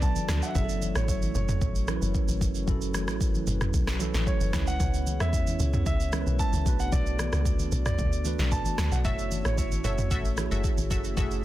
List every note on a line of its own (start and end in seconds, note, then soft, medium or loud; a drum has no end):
0.00 0.15 B1 medium
0.00 0.54 F#3 medium
0.00 0.51 B3 medium
0.00 0.57 B3 medium
0.00 0.53 D4 medium
0.00 0.57 D4 medium
0.00 0.53 F#4 medium
0.00 0.53 A4 medium
0.00 0.58 A4 medium
0.00 0.41 B4 medium
0.00 0.53 D5 medium
0.00 0.44 A5 medium
0.00 kick loud
0.00 shaker medium
0.16 high conga medium
0.16 shaker medium
0.29 0.42 D2 medium
0.29 cross-stick loud
0.29 snare medium
0.29 high conga medium
0.29 shaker loud
0.42 0.49 E5 medium
0.42 shaker medium
0.49 0.55 F#5 medium
0.54 0.93 F#1 loud
0.54 1.40 F#3 medium
0.54 4.50 A3 medium
0.54 1.40 C#4 medium
0.54 6.62 C#4 medium
0.54 6.62 E4 medium
0.54 1.41 E4 medium
0.54 4.50 F#4 medium
0.54 0.63 G#4 medium
0.54 2.66 C#5 medium
0.54 0.97 E5 medium
0.54 kick loud
0.54 low conga medium
0.54 shaker medium
0.64 1.45 A4 medium
0.69 shaker medium
0.82 high conga medium
0.82 shaker medium
0.96 1.32 A1 loud
0.96 1.07 C#5 medium
0.96 cross-stick loud
0.96 shaker soft
1.08 1.33 C#5 medium
1.08 kick loud
1.08 shaker medium
1.22 high conga medium
1.22 shaker medium
1.35 1.60 F#1 loud
1.35 2.37 C#5 medium
1.35 low conga medium
1.35 shaker medium
1.49 mid tom medium
1.49 shaker medium
1.61 1.99 A1 loud
1.61 kick loud
1.61 shaker medium
1.75 shaker medium
1.87 2.52 F#3 medium
1.87 2.52 C#4 medium
1.87 2.53 E4 medium
1.87 1.96 A#4 medium
1.87 cross-stick loud
1.87 high conga medium
1.87 shaker medium
1.97 2.56 B4 medium
2.02 2.14 F#1 loud
2.02 high conga medium
2.02 shaker medium
2.15 kick medium
2.15 shaker medium
2.28 2.40 A1 medium
2.28 high conga medium
2.28 shaker medium
2.41 2.66 F#1 medium
2.41 kick loud
2.41 high conga medium
2.41 shaker loud
2.55 shaker medium
2.67 3.09 F#1 loud
2.67 3.52 F#3 medium
2.67 3.53 C#4 medium
2.67 3.53 E4 medium
2.67 3.54 A4 loud
2.67 4.52 B4 medium
2.67 kick loud
2.67 low conga medium
2.67 shaker medium
2.82 shaker medium
2.94 cross-stick medium
2.94 high conga medium
2.94 shaker medium
3.08 3.45 A1 loud
3.08 cross-stick loud
3.08 shaker soft
3.21 kick loud
3.21 shaker medium
3.35 high conga medium
3.35 shaker medium
3.47 3.72 F#1 loud
3.47 low conga medium
3.47 shaker medium
3.61 cross-stick medium
3.61 mid tom medium
3.61 shaker medium
3.74 4.12 B1 loud
3.74 kick loud
3.74 shaker medium
3.87 cross-stick medium
3.87 snare medium
3.87 shaker medium
3.99 4.53 F#3 medium
3.99 4.52 C#4 medium
3.99 4.53 E4 medium
3.99 4.55 A4 loud
3.99 high conga medium
3.99 shaker medium
4.14 4.26 A1 medium
4.14 snare medium
4.14 high conga medium
4.14 shaker medium
4.27 4.69 C#5 medium
4.27 kick medium
4.27 shaker medium
4.41 4.53 F#1 medium
4.41 high conga medium
4.41 shaker medium
4.52 4.78 C#2 loud
4.52 5.38 G#3 medium
4.52 6.64 B3 medium
4.52 5.39 C#4 medium
4.52 5.39 E4 medium
4.52 6.64 G#4 medium
4.52 5.40 B4 medium
4.52 6.64 C#5 medium
4.52 kick loud
4.52 cross-stick loud
4.52 snare medium
4.52 high conga medium
4.52 shaker loud
4.67 5.22 F#5 loud
4.67 shaker medium
4.80 5.18 C#2 loud
4.80 kick loud
4.80 low conga medium
4.80 shaker medium
4.94 shaker medium
5.07 high conga medium
5.07 shaker medium
5.20 5.57 E2 medium
5.20 5.82 E5 loud
5.20 cross-stick loud
5.20 shaker soft
5.33 kick loud
5.33 shaker medium
5.47 high conga medium
5.47 shaker medium
5.60 5.85 C#2 loud
5.60 low conga medium
5.60 shaker medium
5.73 mid tom medium
5.73 shaker medium
5.86 6.24 C#2 loud
5.86 6.41 E5 medium
5.86 kick loud
5.86 shaker medium
6.00 shaker medium
6.12 6.65 G#3 medium
6.12 6.66 C#4 medium
6.12 6.66 E4 medium
6.12 6.21 A#4 medium
6.12 cross-stick loud
6.12 high conga medium
6.12 shaker medium
6.21 6.67 B4 medium
6.27 6.39 B1 medium
6.27 high conga medium
6.27 shaker medium
6.39 6.81 A5 loud
6.39 kick medium
6.39 shaker medium
6.53 6.65 C#2 medium
6.53 high conga medium
6.53 shaker medium
6.65 6.91 B1 medium
6.65 7.50 A3 medium
6.65 9.02 B3 medium
6.65 7.51 D4 medium
6.65 9.02 D4 medium
6.65 11.45 F#4 medium
6.65 7.52 F#4 medium
6.65 9.02 A4 medium
6.65 7.52 B4 medium
6.65 9.02 D5 medium
6.65 kick loud
6.65 high conga medium
6.65 shaker loud
6.79 6.93 F#5 medium
6.79 shaker medium
6.92 7.30 B1 loud
6.92 7.84 D5 loud
6.92 kick loud
6.92 low conga medium
6.92 shaker medium
7.06 shaker medium
7.19 cross-stick loud
7.19 high conga medium
7.19 shaker medium
7.33 7.70 C#2 medium
7.33 cross-stick loud
7.33 shaker soft
7.45 kick loud
7.45 shaker medium
7.59 high conga medium
7.59 shaker medium
7.72 7.97 B1 loud
7.72 low conga medium
7.72 shaker medium
7.86 8.54 D5 loud
7.86 cross-stick medium
7.86 mid tom medium
7.86 shaker medium
7.99 8.36 D2 loud
7.99 kick loud
7.99 low conga medium
7.99 shaker medium
8.13 shaker medium
8.24 8.89 A3 medium
8.24 8.89 D4 medium
8.24 8.90 F#4 medium
8.24 8.90 B4 medium
8.24 high conga medium
8.24 shaker medium
8.39 8.51 B1 loud
8.39 snare medium
8.39 high conga medium
8.39 shaker medium
8.52 8.65 A1 medium
8.52 8.93 A5 loud
8.52 kick medium
8.52 shaker medium
8.65 high conga medium
8.65 shaker medium
8.78 8.91 D2 medium
8.78 cross-stick loud
8.78 snare medium
8.78 high conga medium
8.78 shaker loud
8.92 9.04 B1 medium
8.92 8.97 F#5 medium
8.92 shaker medium
9.04 9.43 F#1 loud
9.04 9.89 A3 medium
9.04 11.45 A3 medium
9.04 11.45 C#4 medium
9.04 9.90 E4 medium
9.04 11.45 E4 medium
9.04 9.54 F#4 loud
9.04 9.91 F#4 medium
9.04 9.54 A4 medium
9.04 11.15 C#5 medium
9.04 9.91 C#5 medium
9.04 9.46 E5 loud
9.04 9.54 E5 loud
9.04 kick loud
9.04 low conga medium
9.04 shaker medium
9.19 shaker medium
9.31 high conga medium
9.31 shaker medium
9.45 9.82 A1 loud
9.45 9.56 C#5 medium
9.45 cross-stick medium
9.45 shaker soft
9.58 9.83 C#5 medium
9.58 kick loud
9.58 shaker medium
9.72 high conga medium
9.72 shaker medium
9.84 10.09 F#1 loud
9.84 9.99 F#4 medium
9.84 9.99 A4 medium
9.84 10.87 C#5 medium
9.84 9.99 E5 medium
9.84 low conga medium
9.84 shaker medium
9.98 mid tom loud
9.98 shaker medium
10.11 10.49 A1 loud
10.11 10.25 F#4 medium
10.11 10.26 A4 medium
10.11 10.26 E5 loud
10.11 kick loud
10.11 shaker medium
10.25 shaker medium
10.36 11.01 A3 medium
10.36 11.02 E4 medium
10.36 11.02 F#4 medium
10.36 11.03 G#4 medium
10.36 cross-stick medium
10.36 high conga medium
10.36 shaker medium
10.51 10.63 F#1 loud
10.51 10.65 F#4 medium
10.51 10.65 A4 medium
10.51 10.65 E5 medium
10.51 high conga medium
10.51 shaker medium
10.64 kick loud
10.64 shaker medium
10.78 10.90 A1 medium
10.78 high conga medium
10.78 shaker medium
10.90 11.16 F#1 loud
10.90 11.05 F#4 medium
10.90 11.05 A4 medium
10.90 11.05 E5 medium
10.90 kick loud
10.90 high conga medium
10.90 shaker loud
11.04 shaker medium
11.16 11.45 F#1 loud
11.16 11.45 A3 medium
11.16 11.45 E4 medium
11.16 11.45 F#4 loud
11.16 11.45 F#4 medium
11.16 11.45 G#4 loud
11.16 11.45 A4 medium
11.16 11.45 B4 medium
11.16 11.45 E5 loud
11.16 kick loud
11.16 low conga medium
11.16 shaker medium
11.31 shaker medium